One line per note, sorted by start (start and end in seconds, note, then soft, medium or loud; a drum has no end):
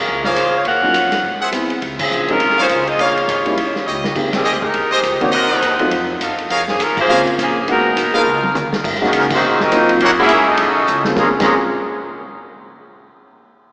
0.00 0.25 G#3 medium
0.00 0.25 C#4 medium
0.00 0.24 F4 medium
0.00 0.24 A#4 medium
0.08 0.35 C#2 medium
0.24 0.55 A#3 medium
0.24 0.54 F4 medium
0.24 0.63 G#4 medium
0.24 0.54 G#4 medium
0.24 0.63 A#4 medium
0.24 0.54 C5 loud
0.24 0.63 C#5 medium
0.24 0.63 F5 loud
0.24 snare soft
0.36 0.64 E2 medium
0.36 kick soft
0.36 hi-hat pedal medium
0.36 ride medium
0.56 0.66 A#3 medium
0.56 0.66 F4 medium
0.56 0.66 G#4 medium
0.56 0.67 C#5 medium
0.65 0.93 D#2 medium
0.65 1.21 C#4 medium
0.65 1.21 A#4 medium
0.65 1.21 F5 medium
0.65 1.50 F#5 loud
0.65 kick soft
0.65 ride medium
0.82 0.93 F#3 medium
0.82 0.93 A#3 medium
0.82 0.93 C#4 medium
0.82 0.93 D#4 medium
0.82 0.94 F4 medium
0.94 1.23 F2 medium
0.94 kick soft
0.94 hi-hat pedal medium
0.94 ride medium
1.12 snare medium
1.12 ride medium
1.23 1.52 G#2 medium
1.23 kick soft
1.41 1.49 G#4 medium
1.41 1.49 C5 medium
1.41 1.49 E5 medium
1.41 1.49 F#5 loud
1.52 1.81 E2 medium
1.52 1.68 G#3 medium
1.52 1.68 B3 medium
1.52 1.69 C4 medium
1.52 1.69 E4 medium
1.52 1.69 G#4 medium
1.52 kick soft
1.52 hi-hat pedal medium
1.52 ride medium
1.70 ride soft
1.82 2.10 C#2 medium
1.82 kick soft
1.82 ride medium
1.99 2.27 F3 medium
1.99 2.27 C4 medium
1.99 2.27 C#4 medium
1.99 2.27 G#4 medium
1.99 kick medium
1.99 crash medium
2.11 2.40 A#1 loud
2.11 hi-hat pedal medium
2.28 2.40 G#3 medium
2.28 2.59 G#3 medium
2.28 2.40 C4 medium
2.28 2.59 C#4 medium
2.28 2.40 C#4 medium
2.28 2.40 D#4 medium
2.28 2.40 F4 medium
2.28 2.59 F4 medium
2.28 2.59 A#4 loud
2.28 ride soft
2.40 2.57 C2 medium
2.40 kick soft
2.40 ride medium
2.49 snare soft
2.58 2.87 G#3 medium
2.58 2.86 C#4 loud
2.58 2.86 F4 medium
2.58 2.66 G#4 medium
2.58 2.66 C5 medium
2.58 2.87 C5 loud
2.58 2.66 C#5 medium
2.58 2.66 F5 loud
2.58 muted upright bass stroke soft
2.58 snare soft
2.69 2.98 C#2 medium
2.69 kick soft
2.69 hi-hat pedal medium
2.69 ride medium
2.87 2.99 C4 medium
2.87 2.99 F4 medium
2.87 2.99 G#4 medium
2.87 3.00 D#5 loud
2.87 ride soft
2.98 3.27 A#1 medium
2.98 3.88 A#3 medium
2.98 3.58 F4 medium
2.98 3.42 G#4 medium
2.98 3.58 G#4 medium
2.98 3.42 A#4 medium
2.98 3.42 C#5 medium
2.98 3.87 C#5 loud
2.98 3.42 F5 loud
2.98 kick soft
2.98 ride medium
3.17 ride soft
3.28 3.56 G#1 medium
3.28 kick soft
3.28 hi-hat pedal medium
3.28 ride medium
3.45 3.56 G3 medium
3.45 3.56 A#3 medium
3.45 3.56 C#4 medium
3.45 3.56 D#4 medium
3.45 3.57 E4 medium
3.45 ride soft
3.57 3.86 D#2 medium
3.57 kick soft
3.57 ride medium
3.76 snare soft
3.86 4.15 C#2 medium
3.86 4.16 E4 medium
3.86 4.16 G4 medium
3.86 4.16 C#5 medium
3.86 4.16 D#5 medium
3.86 hi-hat pedal medium
4.04 snare medium
4.15 4.44 C2 medium
4.15 4.32 G#3 medium
4.15 4.32 A#3 medium
4.15 4.32 C4 medium
4.15 4.32 D#4 medium
4.15 4.32 G4 medium
4.15 kick medium
4.15 crash medium
4.33 4.62 D#3 medium
4.33 4.62 G3 medium
4.33 4.62 C4 medium
4.33 4.62 G#4 medium
4.33 snare medium
4.33 ride medium
4.44 4.73 D2 medium
4.44 4.57 G4 medium
4.44 4.57 G#4 medium
4.44 4.57 C5 medium
4.44 4.57 D#5 loud
4.44 hi-hat pedal medium
4.62 4.89 G#3 medium
4.62 4.90 D#4 medium
4.62 4.90 G4 medium
4.62 4.92 A#4 loud
4.62 kick medium
4.74 5.03 D#2 medium
4.74 kick soft
4.74 ride medium
4.91 5.21 G#3 medium
4.91 5.20 D#4 medium
4.91 5.20 G4 medium
4.91 5.00 G4 medium
4.91 5.00 G#4 medium
4.91 5.21 C5 loud
4.91 5.00 C5 medium
4.91 5.00 D#5 loud
5.03 5.20 C#2 medium
5.03 kick soft
5.03 hi-hat pedal medium
5.03 ride medium
5.20 5.32 D#3 medium
5.20 5.32 A#3 medium
5.20 5.33 A#3 medium
5.20 5.32 C4 medium
5.20 5.32 D4 medium
5.20 5.32 D#4 medium
5.20 5.32 F#4 medium
5.20 5.32 G4 medium
5.20 5.33 C#5 medium
5.20 muted upright bass stroke soft
5.20 ride soft
5.32 5.61 C2 medium
5.32 6.17 D#4 medium
5.32 5.76 F#4 loud
5.32 5.76 A#4 medium
5.32 5.88 A#4 medium
5.32 5.76 C5 medium
5.32 6.17 C5 loud
5.32 5.76 D#5 loud
5.32 6.17 F#5 loud
5.32 kick soft
5.32 ride medium
5.62 5.90 D#2 medium
5.62 kick soft
5.62 hi-hat pedal medium
5.62 ride medium
5.79 5.90 F#3 medium
5.79 5.91 A3 medium
5.79 5.91 C4 medium
5.79 5.91 D#4 medium
5.79 5.91 F4 medium
5.79 ride soft
5.91 6.20 F2 medium
5.91 kick soft
5.91 ride medium
6.21 6.49 F#2 medium
6.21 6.50 F#4 medium
6.21 6.50 A4 medium
6.21 6.50 D#5 medium
6.21 6.49 F5 medium
6.21 kick soft
6.21 hi-hat pedal medium
6.21 ride medium
6.38 ride medium
6.50 6.78 F2 medium
6.50 6.62 G#4 medium
6.50 6.62 A#4 medium
6.50 6.62 C#5 medium
6.50 6.62 F5 loud
6.50 kick soft
6.50 ride medium
6.68 6.80 F3 medium
6.68 6.80 A#3 medium
6.68 6.80 C#4 medium
6.68 6.79 G#4 medium
6.68 snare soft
6.79 7.07 D#2 medium
6.79 6.98 G#3 medium
6.79 6.98 C#4 medium
6.79 6.98 F4 medium
6.79 6.98 A#4 medium
6.79 kick soft
6.79 hi-hat pedal medium
6.79 ride medium
6.97 7.26 A#3 loud
6.97 7.25 F4 medium
6.97 7.26 G#4 loud
6.97 7.26 C5 loud
6.97 kick medium
6.97 crash medium
7.08 7.25 C#2 medium
7.08 7.24 G#3 medium
7.08 7.25 A#3 medium
7.08 7.25 C4 medium
7.08 7.25 C#4 medium
7.08 7.25 F4 medium
7.08 7.21 G#4 medium
7.08 7.21 A#4 medium
7.08 7.20 C#5 medium
7.08 7.20 F5 loud
7.27 muted upright bass stroke soft
7.27 ride soft
7.38 7.66 A#1 loud
7.38 7.56 F3 medium
7.38 7.56 A#3 medium
7.38 7.56 C#4 medium
7.38 7.56 G#4 medium
7.38 kick soft
7.38 hi-hat pedal medium
7.38 ride medium
7.59 7.69 F3 medium
7.59 7.69 A#3 medium
7.59 7.68 C#4 medium
7.59 7.69 G#4 medium
7.67 7.96 G#1 medium
7.67 8.11 G#3 medium
7.67 8.13 G#3 medium
7.67 8.11 A#3 medium
7.67 8.11 B3 medium
7.67 8.11 D#4 medium
7.67 8.12 D#4 medium
7.67 8.11 F#4 medium
7.67 8.12 F#4 medium
7.67 8.13 A#4 loud
7.67 kick soft
7.67 ride medium
7.96 8.12 B1 medium
7.96 kick soft
7.96 hi-hat pedal medium
7.96 ride medium
8.13 8.53 B2 medium
8.13 8.53 F3 medium
8.13 8.24 G#3 medium
8.13 8.53 G#3 medium
8.13 8.24 A#3 medium
8.13 8.54 A#3 medium
8.13 8.25 B3 medium
8.13 8.25 D#4 medium
8.13 8.53 D#4 medium
8.13 8.25 F4 medium
8.13 8.53 F4 medium
8.13 8.21 A#4 medium
8.13 8.53 A#4 medium
8.13 8.22 B4 medium
8.13 8.22 D#5 medium
8.13 8.22 F5 loud
8.13 muted upright bass stroke soft
8.24 8.52 C#2 medium
8.43 high tom medium
8.53 8.70 D#2 medium
8.53 hi-hat pedal medium
8.53 mid tom medium
8.71 muted upright bass stroke soft
8.71 snare medium
8.84 9.12 F#2 medium
8.84 kick medium
8.84 crash medium
8.95 snare soft
9.01 9.40 G#3 medium
9.01 9.40 A#3 medium
9.01 9.40 C#4 medium
9.01 9.40 D#4 medium
9.01 9.40 F#4 medium
9.01 snare medium
9.06 9.10 C#3 medium
9.06 9.10 D#3 medium
9.06 9.10 G#3 medium
9.06 9.11 A#3 medium
9.06 9.11 C#4 medium
9.06 9.11 G#4 medium
9.13 9.41 C#3 loud
9.13 9.23 C#3 medium
9.13 9.23 D#3 medium
9.13 9.23 A#3 medium
9.13 kick soft
9.13 hi-hat pedal medium
9.13 ride medium
9.18 9.25 G#3 medium
9.18 9.25 C#4 medium
9.18 9.25 D#4 medium
9.18 9.25 A#4 medium
9.30 9.60 F#3 medium
9.30 9.59 A#3 medium
9.30 9.60 C4 medium
9.30 9.59 D#4 medium
9.30 9.59 F#4 medium
9.30 9.59 C5 loud
9.30 kick medium
9.30 crash medium
9.35 9.60 D#3 medium
9.41 9.51 C3 loud
9.51 9.61 A#2 medium
9.60 9.70 F#2 medium
9.60 9.90 F#3 medium
9.60 9.90 A#3 medium
9.60 9.91 C4 medium
9.60 9.90 D#4 medium
9.60 9.91 F#4 medium
9.60 9.90 A#4 medium
9.60 9.90 D#5 loud
9.60 snare medium
9.71 9.99 A#2 loud
9.71 10.01 F#3 medium
9.71 10.01 A#3 medium
9.71 10.01 C4 medium
9.71 10.01 D#4 medium
9.71 10.01 F4 medium
9.71 kick soft
9.71 hi-hat pedal medium
9.71 ride medium
9.89 ride medium
10.00 10.29 F#2 medium
10.00 10.09 A#3 loud
10.00 10.10 C#4 loud
10.00 10.10 E4 loud
10.00 10.11 F#4 loud
10.00 10.10 C#5 medium
10.00 10.10 F#5 loud
10.00 kick soft
10.00 ride medium
10.04 10.11 A#4 loud
10.19 10.29 G#3 medium
10.19 10.29 A#3 medium
10.19 10.46 A#3 loud
10.19 10.46 C#4 loud
10.19 10.30 C#4 medium
10.19 10.47 C#4 loud
10.19 10.46 E4 loud
10.19 10.30 E4 medium
10.19 10.30 F#4 medium
10.19 10.47 G#4 loud
10.19 10.47 A#4 loud
10.19 10.47 E5 loud
10.29 10.57 G#2 medium
10.29 kick soft
10.29 hi-hat pedal medium
10.29 ride medium
10.48 11.07 F#3 medium
10.48 11.07 A3 medium
10.48 11.06 C#4 medium
10.48 11.07 D#4 medium
10.48 11.06 F#4 medium
10.48 11.06 A4 medium
10.48 11.06 D#5 loud
10.57 10.87 B1 loud
10.57 kick soft
10.57 ride medium
10.87 11.16 C#2 medium
10.87 hi-hat pedal medium
11.04 11.16 A#3 medium
11.04 11.17 C4 medium
11.04 11.17 C#4 medium
11.04 11.17 F4 medium
11.04 11.17 G#4 medium
11.04 snare medium
11.16 11.27 A#1 loud
11.16 11.28 A#2 loud
11.16 11.28 F3 loud
11.16 11.28 G#3 medium
11.16 11.28 A#3 medium
11.16 11.28 C4 medium
11.16 11.28 C#4 medium
11.16 11.29 C#4 medium
11.16 11.29 F4 medium
11.16 11.27 G#4 medium
11.16 11.29 G#4 medium
11.16 11.27 C#5 medium
11.16 11.27 F5 medium
11.16 11.28 A#5 medium
11.16 kick medium
11.16 snare medium
11.40 11.54 A#1 loud
11.40 11.55 A#2 medium
11.40 11.55 F3 medium
11.40 11.55 G#3 medium
11.40 11.54 A#3 medium
11.40 11.54 C4 medium
11.40 11.55 C#4 medium
11.40 11.54 C#4 medium
11.40 11.54 F4 medium
11.40 11.54 G#4 medium
11.40 11.55 G#4 medium
11.40 11.54 C#5 medium
11.40 11.54 F5 medium
11.40 11.54 A#5 medium
11.40 kick loud
11.40 snare medium
11.40 crash medium